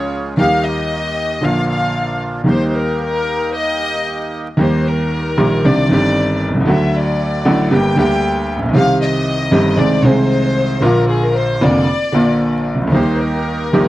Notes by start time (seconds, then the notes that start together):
Already playing: C#2 C#3 F3 G#3 C#4 F4 G#4 C#5
0.37 D#2 D#3 G3 A#3 D#4 G4 F5
0.41 G4
0.65 D#5
1.41 A#1 A#2 D3 F3 A#3 D4 F4 F5
1.70 F5
2.44 D#2 D#3 G3 A#3 D#4 G4
2.49 C5
2.68 C5
2.77 A#4
3.02 A#4
3.53 D#5
4.57 D#2 D#3 G3 A#3 G4 C5
4.87 A#4
5.37 A#1 A#2 D#3 G3 A#3 G4
5.64 C2 C3 D#3 C4 D4 G4 D5
5.89 G1 G2 D#3 C4 D4 D5
5.93 G4
6.48 B1
6.54 C2
6.60 C#2
6.65 D2 D3 F#3 A3 E5
6.70 F#4
6.95 D5
7.45 A1 A2 D3 F#3 A3 F#4
7.71 G1 G2 D3 G3 A#3 G4 G5
7.96 D2 D3 G3 A#3 G4 G5
8.56 A1
8.62 A#1
8.69 B1
8.73 C2 C3 D#3 G3 C4 G4 F5
9.01 D#5
9.51 G1 G2 D#3 G3 C4 G4
9.77 C2 C3 D#3 G#3 C4 G#4 D5
10.02 C2 C3 D#3 G#3 C4 C5
10.06 G#4
10.80 A#1 A#2 D3 F3 A#3 A#4
10.85 F4
11.08 G#4
11.22 A#4
11.36 C5
11.61 F1 F2 D3 F3 A#3 F4 D5
12.12 A#1 A#2 D3 F3 A#3 F4
12.74 C2
12.81 C#2
12.87 D2
12.92 D#2 D#3 G3 A#3 D#4 G4 C5
12.96 G4
13.19 A#4
13.73 A#1 A#2 D#3 G3 A#3 D#4 G4